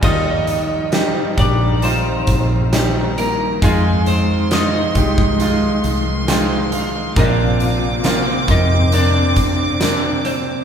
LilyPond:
<<
  \new Staff \with { instrumentName = "Violin section" } { \time 4/4 \key ees \major \tempo 4 = 68 g''4 bes''2 bes''4 | c'''1 | d'''1 | }
  \new Staff \with { instrumentName = "Lead electric guitar" } { \time 4/4 \key ees \major <ees' ees''>4. <d' d''>8 <c' c''>4. <bes bes'>8 | <aes aes'>8 <c' c''>8 <ees' ees''>2 r4 | <f' f''>4. <ees' ees''>8 <d' d''>4. <c' c''>8 | }
  \new Staff \with { instrumentName = "Grand piano" } { \time 4/4 \key ees \major << { ees4. r2 r8 | r2. g''8 f''8 | bes,4. r2 r8 | } \\ { <g ees' f'>4 <g ees' g'>8 <ees g g'>8 <g ees' f'>4 <g ees' g'>4 | <aes ees' f'>4 <aes ees' f'>8 <aes ees' g'>8 <aes ees' f'>4 <aes ees' f'>4 | <bes c' d'>4 <bes c' f'>8 <bes c' f'>8 <bes c' d'>4 <bes c' d'>4 | } >> }
  \new Staff \with { instrumentName = "String section" } { \clef bass \time 4/4 \key ees \major <ees f g>1 | <f aes>1 | <c bes c'>1 | }
  \new Staff \with { instrumentName = "Fingered electric bass" } { \clef bass \time 4/4 \key ees \major ees,4. bes,,4 bes,,4. | f,4. c,4 c,4. | bes,,4. f,2~ f,8 | }
  \new DrumStaff \with { instrumentName = "Drums" } \drummode { \time 4/4 <cymc bd>8 hh8 <hh sn>8 <hh bd>8 hh8 <hh bd>8 <hh sn>8 hh8 | <hh bd>8 hh8 <hh sn>8 <hh bd>16 bd16 hh8 hh8 <hh sn>8 hh8 | <hh bd>8 hh8 <hh sn>8 <hh bd>8 hh8 <hh bd>8 <hh sn>8 hh8 | }
>>